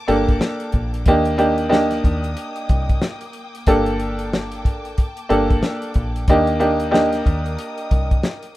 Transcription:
0.00 6.25 A#3 medium
0.00 8.57 G5 medium
0.00 1.04 A5 medium
0.00 1.04 D6 loud
0.08 0.39 G1 loud
0.08 1.00 A#3 medium
0.08 1.00 D4 medium
0.08 1.00 G4 medium
0.08 1.00 A4 loud
0.08 closed hi-hat medium
0.29 kick loud
0.29 closed hi-hat soft
0.41 snare loud
0.41 snare medium
0.60 closed hi-hat medium
0.72 1.04 A#1 loud
0.72 kick medium
0.72 closed hi-hat medium
0.94 closed hi-hat medium
1.05 2.00 D#2 loud
1.05 1.36 A#3 loud
1.05 1.37 D4 medium
1.05 1.37 D#4 medium
1.05 1.37 G4 loud
1.05 8.57 D6 medium
1.05 3.64 D#6 medium
1.05 kick loud
1.05 closed hi-hat loud
1.25 closed hi-hat medium
1.38 1.68 A#3 medium
1.38 1.68 D4 medium
1.38 1.68 D#4 medium
1.38 1.68 G4 loud
1.38 closed hi-hat medium
1.58 closed hi-hat medium
1.69 3.23 A#3 loud
1.69 3.23 D4 medium
1.69 3.23 D#4 medium
1.69 3.23 G4 loud
1.69 snare loud
1.74 snare medium
1.91 snare soft
1.91 closed hi-hat medium
2.04 2.34 D#2 medium
2.04 kick medium
2.04 closed hi-hat medium
2.24 closed hi-hat medium
2.37 closed hi-hat medium
2.56 closed hi-hat medium
2.69 2.99 C2 medium
2.69 kick loud
2.69 closed hi-hat medium
2.89 kick loud
2.89 closed hi-hat soft
3.02 snare loud
3.02 snare medium
3.21 closed hi-hat medium
3.33 closed hi-hat medium
3.55 closed hi-hat medium
3.67 4.65 G1 loud
3.67 5.03 A#3 medium
3.67 5.03 D4 medium
3.67 5.03 G4 medium
3.67 5.03 A4 loud
3.67 6.26 A5 medium
3.67 kick loud
3.67 closed hi-hat loud
3.86 closed hi-hat medium
4.00 closed hi-hat medium
4.19 closed hi-hat medium
4.33 snare loud
4.33 snare medium
4.52 closed hi-hat medium
4.65 4.95 A1 medium
4.65 kick medium
4.65 closed hi-hat medium
4.85 closed hi-hat medium
4.98 kick medium
4.98 closed hi-hat medium
5.17 closed hi-hat medium
5.29 5.60 G1 loud
5.29 6.21 A#3 loud
5.29 6.21 D4 medium
5.29 6.21 G4 medium
5.29 6.22 A4 loud
5.29 closed hi-hat medium
5.50 kick loud
5.50 closed hi-hat soft
5.63 snare loud
5.63 snare medium
5.82 closed hi-hat medium
5.94 6.26 A#1 loud
5.94 kick medium
5.94 closed hi-hat medium
6.16 closed hi-hat medium
6.27 7.22 D#2 loud
6.27 6.58 A#3 loud
6.27 6.58 D4 medium
6.27 6.59 D#4 loud
6.27 6.59 G4 loud
6.27 8.57 A#4 medium
6.27 8.57 D#6 medium
6.27 kick loud
6.27 closed hi-hat loud
6.47 closed hi-hat medium
6.60 6.90 A#3 medium
6.60 6.90 D4 medium
6.60 6.90 D#4 medium
6.60 6.90 G4 loud
6.60 closed hi-hat medium
6.80 closed hi-hat medium
6.91 8.45 A#3 medium
6.91 8.45 D4 medium
6.91 8.45 D#4 medium
6.91 8.45 G4 loud
6.91 snare loud
6.95 snare medium
7.13 snare soft
7.13 closed hi-hat medium
7.26 7.56 D#2 medium
7.26 kick medium
7.26 closed hi-hat medium
7.46 closed hi-hat medium
7.59 closed hi-hat medium
7.78 closed hi-hat medium
7.91 8.21 C2 loud
7.91 kick loud
7.91 closed hi-hat medium
8.11 kick loud
8.11 closed hi-hat soft
8.23 snare loud
8.23 snare medium
8.43 closed hi-hat medium

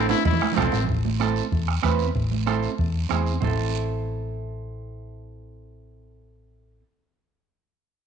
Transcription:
0.00 0.12 A1 loud
0.00 0.15 C4 medium
0.00 0.15 E4 medium
0.00 0.15 A4 medium
0.09 0.24 E4 loud
0.09 high conga medium
0.09 high timbale medium
0.09 short guiro medium
0.25 0.38 E2 loud
0.25 0.57 E4 medium
0.25 bombo low medium
0.25 cowbell medium
0.25 low timbale medium
0.25 long guiro medium
0.31 low conga loud
0.41 bombo rim medium
0.41 high conga medium
0.41 low timbale medium
0.52 0.88 C4 medium
0.52 low conga medium
0.56 0.71 B1 medium
0.56 0.79 C4 medium
0.56 0.79 E4 medium
0.56 0.79 A4 medium
0.56 bombo low medium
0.56 bombo rim medium
0.56 low timbale medium
0.56 short guiro medium
0.62 low conga medium
0.72 0.87 A1 medium
0.72 low timbale medium
0.72 short guiro medium
0.84 low conga medium
0.89 1.40 A1 medium
0.89 bombo low medium
0.89 long guiro medium
1.05 high conga medium
1.20 1.42 C4 medium
1.20 1.42 E4 medium
1.20 1.43 A4 medium
1.20 bombo rim medium
1.20 high conga medium
1.20 short guiro medium
1.36 short guiro medium
1.52 1.77 E2 medium
1.52 bombo low medium
1.52 long guiro medium
1.68 bombo rim medium
1.83 2.09 E2 medium
1.83 2.05 C4 medium
1.83 2.06 E4 medium
1.83 2.06 B4 medium
1.83 bombo low medium
1.83 bombo rim medium
1.83 high conga medium
1.83 short guiro medium
1.99 short guiro medium
2.15 2.66 A1 medium
2.15 bombo low medium
2.15 long guiro medium
2.31 high conga medium
2.46 2.69 C4 medium
2.46 2.69 E4 medium
2.46 2.70 A4 medium
2.46 bombo rim medium
2.46 high conga medium
2.46 short guiro medium
2.63 short guiro medium
2.78 3.04 E2 medium
2.78 bombo low medium
2.78 long guiro medium
3.09 3.36 E2 medium
3.09 3.32 C4 medium
3.09 3.32 E4 medium
3.09 3.33 G#4 medium
3.09 bombo rim medium
3.09 high conga medium
3.09 short guiro medium
3.26 short guiro medium
3.41 6.81 A1 medium
3.41 6.79 C4 medium
3.41 6.81 E4 medium
3.41 6.83 A4 medium
3.41 bombo low medium
3.41 low conga medium
3.41 long guiro medium

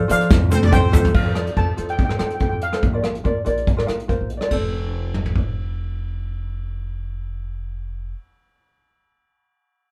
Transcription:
0.00 0.10 F5 medium
0.08 0.28 F3 medium
0.08 0.34 F4 medium
0.08 0.35 A4 medium
0.08 0.35 C5 medium
0.08 0.90 D5 medium
0.08 0.90 F5 medium
0.08 closed hi-hat loud
0.08 shaker loud
0.21 closed hi-hat medium
0.21 shaker soft
0.31 0.59 F2 loud
0.31 kick loud
0.31 snare medium
0.31 shaker medium
0.50 0.57 C4 medium
0.50 0.64 F4 medium
0.50 0.64 A4 medium
0.50 0.65 C5 medium
0.50 0.57 C5 medium
0.50 high tom medium
0.50 shaker loud
0.63 0.90 F2 medium
0.63 0.73 D4 medium
0.63 0.73 D5 loud
0.63 high tom medium
0.63 shaker soft
0.71 1.12 C4 medium
0.71 0.85 F4 medium
0.71 0.85 A4 medium
0.71 0.85 C5 medium
0.71 1.12 C5 medium
0.71 1.12 G5 loud
0.71 kick medium
0.71 mid tom medium
0.71 shaker medium
0.92 1.12 F2 loud
0.92 1.12 F4 medium
0.92 1.12 A4 medium
0.92 1.12 C5 loud
0.92 floor tom loud
0.92 shaker loud
1.05 floor tom loud
1.05 shaker soft
1.14 1.51 F2 loud
1.14 1.58 F5 medium
1.14 kick loud
1.14 crash medium
1.25 1.31 F4 medium
1.25 1.31 A4 soft
1.25 1.31 C5 medium
1.34 1.48 F4 medium
1.34 1.49 A4 medium
1.34 1.49 D5 medium
1.34 cross-stick medium
1.34 closed hi-hat medium
1.47 closed hi-hat medium
1.56 1.75 F2 medium
1.56 1.70 F4 medium
1.56 1.70 A4 medium
1.56 1.70 C5 medium
1.56 1.90 A5 medium
1.56 kick medium
1.56 closed hi-hat medium
1.77 2.15 F2 medium
1.77 1.96 F4 medium
1.77 1.96 A4 medium
1.77 1.97 C5 medium
1.77 closed hi-hat medium
1.89 1.96 G5 medium
1.89 closed hi-hat soft
1.97 2.04 G5 medium
1.97 kick loud
1.97 closed hi-hat medium
2.05 2.11 G5 medium
2.09 2.16 F4 medium
2.09 2.16 A4 medium
2.09 2.16 C5 medium
2.09 cross-stick medium
2.18 2.48 F2 medium
2.18 2.32 F4 medium
2.18 2.33 A4 medium
2.18 2.33 C5 medium
2.18 2.25 G5 medium
2.18 cross-stick medium
2.18 closed hi-hat medium
2.27 2.33 G5 soft
2.27 closed hi-hat medium
2.35 2.40 G5 medium
2.40 2.59 F4 medium
2.40 2.60 A4 soft
2.40 2.60 C5 medium
2.40 2.48 G5 medium
2.40 kick medium
2.40 closed hi-hat medium
2.49 2.71 F2 medium
2.49 2.57 G5 medium
2.62 4.06 F5 medium
2.62 closed hi-hat medium
2.72 2.82 F4 medium
2.72 2.83 A4 medium
2.72 2.83 C5 medium
2.72 cross-stick medium
2.72 closed hi-hat medium
2.83 3.19 A#1 loud
2.83 kick medium
2.83 closed hi-hat medium
2.93 2.99 F4 medium
2.93 3.00 A#4 medium
2.93 3.00 D5 medium
3.02 3.16 F4 medium
3.02 3.17 A#4 medium
3.02 3.17 F5 medium
3.02 cross-stick medium
3.02 closed hi-hat medium
3.15 closed hi-hat medium
3.24 3.43 A#1 medium
3.24 3.38 F4 medium
3.24 3.38 A#4 medium
3.24 3.38 D5 medium
3.24 kick medium
3.24 closed hi-hat medium
3.45 3.83 A#1 medium
3.45 3.64 F4 medium
3.45 3.65 A#4 medium
3.45 3.65 D5 medium
3.45 closed hi-hat medium
3.58 closed hi-hat medium
3.67 kick medium
3.67 closed hi-hat medium
3.77 3.83 F4 medium
3.77 3.84 A#4 medium
3.77 3.84 D5 medium
3.77 cross-stick medium
3.86 4.16 A#1 medium
3.86 4.00 F4 medium
3.86 4.00 A#4 medium
3.86 4.01 F5 medium
3.86 cross-stick medium
3.86 closed hi-hat medium
4.00 closed hi-hat medium
4.08 4.28 F4 medium
4.08 4.28 A#4 medium
4.08 4.28 C5 medium
4.08 4.35 F5 soft
4.08 kick medium
4.08 closed hi-hat soft
4.21 4.39 A#1 medium
4.30 closed hi-hat medium
4.37 4.41 D5 medium
4.37 cross-stick medium
4.37 closed hi-hat soft
4.41 4.47 F4 medium
4.41 4.51 A#4 medium
4.41 4.52 D5 medium
4.48 8.12 F1 medium
4.48 8.10 F4 medium
4.48 8.12 A4 medium
4.48 kick medium
4.48 ride medium
4.53 8.14 C5 medium
5.14 mid tom soft
5.26 floor tom soft
5.36 kick medium

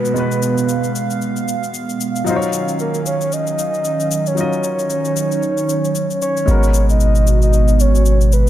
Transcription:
0.00 2.23 B2 medium
0.00 0.11 G#3 medium
0.00 2.23 G#3 medium
0.00 0.14 B3 medium
0.00 2.23 B3 medium
0.00 0.13 F#4 medium
0.00 0.14 F#4 medium
0.00 0.14 B4 medium
0.00 0.92 B4 medium
0.00 downlifter medium
0.05 shaker medium
0.14 2.22 G#3 medium
0.14 2.23 B3 medium
0.14 2.24 F#4 medium
0.14 4.33 F5 medium
0.14 shaker medium
0.19 2.24 B4 medium
0.32 shaker medium
0.42 shaker medium
0.58 shaker medium
0.69 shaker medium
0.84 shaker soft
0.95 shaker medium
1.10 shaker soft
1.22 shaker medium
1.36 shaker medium
1.48 shaker medium
1.64 shaker medium
1.74 shaker medium
1.89 shaker medium
2.01 shaker medium
2.16 shaker medium
2.25 6.44 D#3 medium
2.25 4.32 F#3 medium
2.25 6.44 F#3 medium
2.25 6.44 C#4 medium
2.25 4.33 D#4 medium
2.25 4.34 F4 medium
2.25 shaker medium
2.30 2.36 C5 medium
2.36 4.38 C#5 medium
2.42 shaker medium
2.53 shaker medium
2.68 shaker medium
2.79 3.04 A#4 medium
2.79 shaker medium
2.94 shaker soft
3.06 3.34 C#5 loud
3.06 shaker medium
3.21 shaker soft
3.32 4.29 D#5 loud
3.32 shaker medium
3.47 shaker medium
3.59 shaker medium
3.74 shaker medium
3.85 shaker medium
4.00 shaker soft
4.11 shaker loud
4.26 6.22 C#5 loud
4.26 shaker medium
4.35 6.43 F#3 medium
4.35 6.44 D#4 medium
4.35 6.46 D#4 medium
4.35 6.45 F4 medium
4.35 shaker medium
4.41 6.46 D#5 medium
4.53 shaker medium
4.64 shaker medium
4.79 shaker medium
4.90 shaker medium
5.05 shaker soft
5.17 shaker medium
5.32 shaker soft
5.43 shaker medium
5.57 shaker medium
5.69 shaker medium
5.85 shaker medium
5.95 shaker medium
6.11 shaker medium
6.22 6.86 C#5 loud
6.22 shaker medium
6.37 shaker medium
6.46 8.50 G#1 medium
6.46 8.50 B2 medium
6.46 8.50 G#3 medium
6.46 8.50 B3 medium
6.46 8.50 F#4 medium
6.46 shaker medium
6.51 8.50 A#4 medium
6.63 shaker medium
6.74 shaker medium
6.89 7.39 D#5 loud
6.89 shaker medium
7.00 shaker medium
7.15 shaker soft
7.27 shaker medium
7.42 7.82 D#5 loud
7.42 shaker soft
7.53 shaker medium
7.68 shaker medium
7.80 8.33 C#5 loud
7.80 shaker medium
7.95 shaker medium
8.06 shaker medium
8.21 shaker medium
8.32 8.50 B4 medium
8.32 shaker medium

